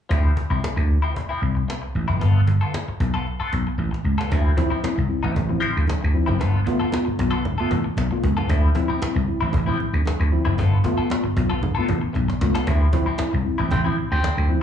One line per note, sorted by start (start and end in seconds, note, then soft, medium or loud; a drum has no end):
0.09 0.30 D2 medium
0.09 0.30 F3 medium
0.09 0.30 C4 medium
0.09 0.31 E4 medium
0.09 cajon bass loud
0.36 muted clean electric guitar stroke soft
0.36 cajon bass medium
0.50 0.60 C2 medium
0.50 0.62 F3 soft
0.50 0.63 C4 soft
0.50 0.64 E4 medium
0.63 muted clean electric guitar stroke soft
0.63 muted slap bass stroke soft
0.63 cajon slap loud
0.76 0.97 D2 medium
0.76 muted clean electric guitar stroke soft
0.91 cajon slap soft
1.02 1.14 F3 medium
1.02 1.14 C4 medium
1.02 1.15 E4 medium
1.15 muted clean electric guitar stroke soft
1.15 cajon bass medium
1.29 1.41 F3 medium
1.29 1.41 C4 medium
1.29 1.42 E4 medium
1.42 1.62 C2 medium
1.42 muted clean electric guitar stroke soft
1.42 cajon slap soft
1.55 muted clean electric guitar stroke soft
1.68 muted clean electric guitar stroke soft
1.68 cajon slap medium
1.82 muted clean electric guitar stroke soft
1.95 2.05 A1 medium
1.95 cajon slap soft
2.08 2.18 F#1 medium
2.08 2.28 F3 medium
2.08 2.19 C4 medium
2.08 2.20 E4 medium
2.20 2.41 G1 medium
2.20 2.40 B3 medium
2.20 2.40 F4 medium
2.20 2.41 A4 medium
2.20 cajon bass loud
2.47 2.58 G1 medium
2.47 muted clean electric guitar stroke soft
2.47 cajon bass medium
2.61 2.73 B3 medium
2.61 2.73 F4 medium
2.61 2.74 A4 medium
2.74 muted clean electric guitar stroke soft
2.74 cajon slap loud
2.88 muted slap bass stroke soft
2.88 muted clean electric guitar stroke soft
3.00 3.10 B1 medium
3.00 cajon bass loud
3.14 3.25 B3 medium
3.14 3.26 F4 medium
3.14 3.27 A4 medium
3.27 muted clean electric guitar stroke soft
3.27 cajon slap soft
3.40 3.53 B3 medium
3.40 3.53 F4 medium
3.40 3.54 A4 medium
3.40 muted slap bass stroke soft
3.53 3.63 B1 medium
3.53 muted clean electric guitar stroke soft
3.53 cajon bass medium
3.67 muted clean electric guitar stroke soft
3.78 3.89 A1 medium
3.78 muted clean electric guitar stroke soft
3.78 cajon slap soft
3.91 muted clean electric guitar stroke soft
3.91 cajon slap medium
4.04 4.15 C#2 medium
4.04 cajon slap soft
4.18 4.31 B3 medium
4.18 4.31 F4 medium
4.18 4.37 A4 medium
4.18 cajon slap medium
4.30 4.51 D2 loud
4.30 4.45 D3 medium
4.30 4.50 F3 medium
4.30 4.50 C4 medium
4.30 4.51 E4 medium
4.30 cajon bass loud
4.30 muted conga medium
4.56 4.70 F3 medium
4.56 4.70 C4 medium
4.56 4.70 E4 loud
4.56 muted clean electric guitar stroke soft
4.56 cajon bass medium
4.56 muted conga medium
4.70 4.82 F3 medium
4.70 4.76 C4 soft
4.70 4.82 C4 medium
4.70 4.83 E4 medium
4.70 4.76 E4 soft
4.70 muted slap bass stroke soft
4.83 4.96 C4 medium
4.83 4.97 E4 medium
4.83 muted clean electric guitar stroke soft
4.83 muted slap bass stroke soft
4.83 cajon slap medium
4.83 high conga medium
4.96 5.07 C2 medium
4.96 5.09 D3 medium
4.96 muted clean electric guitar stroke medium
5.09 5.23 C4 medium
5.09 5.23 E4 medium
5.23 5.33 A1 medium
5.23 5.34 F3 medium
5.23 5.35 C4 medium
5.23 5.35 E4 medium
5.35 5.56 A1 loud
5.35 5.49 D3 medium
5.35 muted clean electric guitar stroke soft
5.35 cajon bass medium
5.35 muted conga medium
5.35 low conga medium
5.49 5.61 F3 medium
5.49 5.61 C4 medium
5.49 5.61 E4 medium
5.49 muted clean electric guitar stroke soft
5.60 5.80 F3 medium
5.60 5.74 C4 medium
5.60 5.68 C4 soft
5.60 5.74 E4 loud
5.60 5.68 E4 soft
5.60 muted conga soft
5.75 5.86 D2 medium
5.75 muted clean electric guitar stroke soft
5.87 6.02 D3 medium
5.87 muted clean electric guitar stroke soft
5.87 cajon slap loud
5.87 high conga medium
6.01 6.12 D2 medium
6.01 muted clean electric guitar stroke soft
6.14 6.27 F3 medium
6.14 6.28 C4 medium
6.14 6.28 E4 medium
6.26 6.41 F#1 medium
6.26 6.47 F3 medium
6.26 6.38 C4 medium
6.26 6.34 C4 soft
6.26 6.39 E4 medium
6.26 6.34 E4 soft
6.26 high conga medium
6.39 6.60 G1 medium
6.39 6.54 G2 medium
6.39 6.54 D3 medium
6.39 6.59 B3 medium
6.39 6.59 F4 medium
6.39 6.60 A4 medium
6.39 cajon bass loud
6.39 muted conga medium
6.65 6.80 A3 medium
6.65 6.80 B3 medium
6.65 6.80 F4 loud
6.65 muted clean electric guitar stroke soft
6.65 cajon bass medium
6.65 muted conga medium
6.80 6.86 B3 soft
6.80 6.90 B3 medium
6.80 6.90 F4 medium
6.80 6.86 F4 soft
6.80 6.92 A4 medium
6.80 muted slap bass stroke soft
6.91 7.06 B3 medium
6.91 7.06 F4 medium
6.91 muted clean electric guitar stroke soft
6.91 cajon slap medium
6.91 high conga medium
7.05 7.19 G2 medium
7.05 7.19 D3 medium
7.05 muted clean electric guitar stroke soft
7.05 muted slap bass stroke soft
7.19 7.29 B1 medium
7.19 7.32 B3 medium
7.19 7.33 F4 medium
7.19 cajon bass medium
7.31 7.43 B3 medium
7.31 7.44 F4 medium
7.31 7.45 A4 medium
7.45 7.59 G2 medium
7.45 7.59 D3 medium
7.45 muted clean electric guitar stroke soft
7.45 cajon slap soft
7.45 muted conga medium
7.45 low conga medium
7.58 7.71 A3 medium
7.58 7.69 B3 medium
7.58 7.71 B3 medium
7.58 7.69 F4 medium
7.58 7.71 F4 medium
7.58 7.70 A4 medium
7.58 muted slap bass stroke soft
7.70 7.81 A1 medium
7.70 7.77 B3 soft
7.70 7.78 F4 soft
7.70 muted clean electric guitar stroke soft
7.70 cajon bass medium
7.70 low conga medium
7.84 muted clean electric guitar stroke medium
7.97 8.07 B1 loud
7.97 muted clean electric guitar stroke soft
7.97 cajon slap medium
7.97 high conga medium
8.11 8.23 A3 medium
8.11 8.23 B3 medium
8.11 8.23 F4 medium
8.11 muted clean electric guitar stroke soft
8.23 8.34 C#2 medium
8.23 cajon bass medium
8.37 8.49 G2 medium
8.37 8.48 D3 medium
8.37 8.49 B3 medium
8.37 8.50 F4 medium
8.37 8.55 A4 medium
8.37 high conga medium
8.48 8.69 D2 loud
8.48 8.63 D3 medium
8.48 8.68 F3 medium
8.48 8.69 C4 medium
8.48 8.69 E4 medium
8.48 cajon bass loud
8.48 muted conga medium
8.75 8.88 F3 medium
8.75 8.89 C4 medium
8.75 8.89 E4 loud
8.75 muted clean electric guitar stroke soft
8.75 cajon bass medium
8.75 muted conga medium
8.88 9.00 F3 medium
8.88 9.01 C4 medium
8.88 8.95 C4 soft
8.88 9.01 E4 medium
8.88 8.95 E4 soft
8.88 muted slap bass stroke soft
9.01 9.15 C4 medium
9.01 9.15 E4 medium
9.01 muted clean electric guitar stroke soft
9.01 muted slap bass stroke soft
9.01 cajon slap loud
9.01 high conga medium
9.15 9.25 C2 medium
9.15 9.27 D3 medium
9.15 muted clean electric guitar stroke soft
9.28 9.41 C4 medium
9.28 9.41 E4 medium
9.41 9.51 A1 medium
9.41 9.53 F3 medium
9.41 9.53 C4 medium
9.41 9.54 E4 medium
9.53 9.73 A1 medium
9.53 9.67 D3 medium
9.53 muted clean electric guitar stroke soft
9.53 cajon bass medium
9.53 muted conga medium
9.53 low conga medium
9.66 9.79 F3 medium
9.66 9.78 F3 medium
9.66 9.79 C4 medium
9.66 9.78 C4 medium
9.66 9.79 E4 medium
9.79 9.86 C4 soft
9.79 9.86 E4 soft
9.79 muted clean electric guitar stroke soft
9.79 muted conga soft
9.93 10.03 D2 medium
9.93 muted clean electric guitar stroke soft
10.06 10.19 D3 medium
10.06 muted clean electric guitar stroke soft
10.06 cajon slap medium
10.06 high conga medium
10.20 10.29 D2 medium
10.20 muted clean electric guitar stroke soft
10.32 10.45 F3 medium
10.32 10.45 C4 medium
10.32 10.45 E4 medium
10.45 10.58 F#1 medium
10.45 10.65 F3 medium
10.45 10.51 C4 soft
10.45 10.57 C4 medium
10.45 10.57 E4 medium
10.45 10.51 E4 soft
10.45 high conga medium
10.57 10.78 G1 loud
10.57 10.72 G2 medium
10.57 10.72 D3 medium
10.57 10.77 B3 medium
10.57 10.77 F4 medium
10.57 10.78 A4 medium
10.57 cajon bass loud
10.57 muted conga medium
10.84 10.98 A3 medium
10.84 10.98 B3 medium
10.84 10.98 F4 loud
10.84 muted clean electric guitar stroke soft
10.84 cajon bass medium
10.84 muted conga medium
10.98 11.04 B3 soft
10.98 11.08 B3 soft
10.98 11.09 F4 medium
10.98 11.04 F4 soft
10.98 11.10 A4 medium
10.98 muted slap bass stroke soft
11.10 11.24 B3 medium
11.10 11.24 F4 medium
11.10 muted clean electric guitar stroke soft
11.10 cajon slap loud
11.10 high conga medium
11.24 11.36 G2 medium
11.24 11.36 D3 medium
11.24 muted clean electric guitar stroke medium
11.24 muted slap bass stroke soft
11.36 11.47 B1 medium
11.36 11.50 B3 medium
11.36 11.50 F4 medium
11.36 cajon bass loud
11.50 11.61 B3 medium
11.50 11.62 F4 medium
11.50 11.62 A4 medium
11.62 11.76 G2 medium
11.62 11.76 D3 medium
11.62 muted clean electric guitar stroke soft
11.62 cajon slap soft
11.62 muted conga medium
11.62 low conga medium
11.75 11.89 A3 medium
11.75 11.86 B3 medium
11.75 11.89 B3 medium
11.75 11.88 F4 medium
11.75 11.89 F4 medium
11.75 11.88 A4 medium
11.75 muted slap bass stroke soft
11.88 11.99 A1 medium
11.88 11.95 B3 soft
11.88 11.95 F4 soft
11.88 muted clean electric guitar stroke soft
11.88 cajon bass medium
11.88 muted conga soft
11.88 low conga medium
12.01 muted clean electric guitar stroke medium
12.13 12.25 B1 loud
12.13 12.29 G2 medium
12.13 12.29 D3 medium
12.13 muted clean electric guitar stroke soft
12.13 cajon slap soft
12.13 high conga medium
12.28 muted clean electric guitar stroke soft
12.28 cajon slap medium
12.41 12.51 C#2 medium
12.41 12.54 A3 medium
12.41 12.55 B3 medium
12.41 12.55 F4 medium
12.41 cajon slap medium
12.55 12.60 B3 soft
12.55 12.67 B3 medium
12.55 12.68 F4 medium
12.55 12.60 F4 soft
12.55 12.73 A4 medium
12.55 cajon slap medium
12.55 high conga medium
12.66 12.86 D2 medium
12.66 12.80 D3 medium
12.66 12.86 F3 medium
12.66 12.86 C4 medium
12.66 12.87 E4 loud
12.66 cajon bass loud
12.66 muted conga medium
12.93 13.06 F3 medium
12.93 13.06 C4 medium
12.93 13.06 E4 loud
12.93 muted clean electric guitar stroke soft
12.93 cajon bass loud
12.93 muted conga medium
13.06 13.17 F3 medium
13.06 13.18 C4 medium
13.06 13.12 C4 soft
13.06 13.18 E4 medium
13.06 13.12 E4 soft
13.06 muted slap bass stroke soft
13.18 13.32 C4 medium
13.18 13.32 E4 medium
13.18 muted clean electric guitar stroke soft
13.18 muted slap bass stroke soft
13.18 cajon slap loud
13.18 high conga medium
13.31 13.43 C2 medium
13.31 13.44 D3 medium
13.31 muted clean electric guitar stroke medium
13.45 13.58 C4 medium
13.45 13.58 E4 medium
13.58 13.68 A1 medium
13.58 13.71 F3 medium
13.58 13.71 C4 medium
13.58 13.72 E4 medium
13.71 13.91 A1 loud
13.71 13.84 D3 medium
13.71 13.80 C4 medium
13.71 cajon bass medium
13.71 muted conga medium
13.71 low conga medium
13.84 13.96 F3 medium
13.84 13.96 C4 medium
13.84 13.97 C4 medium
13.84 13.97 E4 medium
13.84 13.96 E4 medium
13.97 14.03 C4 soft
13.97 14.03 E4 soft
13.97 muted clean electric guitar stroke medium
14.11 14.21 D2 medium
14.11 14.48 C4 loud
14.11 muted clean electric guitar stroke soft
14.22 14.36 D3 medium
14.22 muted clean electric guitar stroke soft
14.22 cajon slap loud
14.22 high conga medium
14.36 14.47 D2 medium
14.36 muted clean electric guitar stroke soft
14.49 14.62 F3 medium
14.49 14.62 C4 medium
14.49 14.62 E4 medium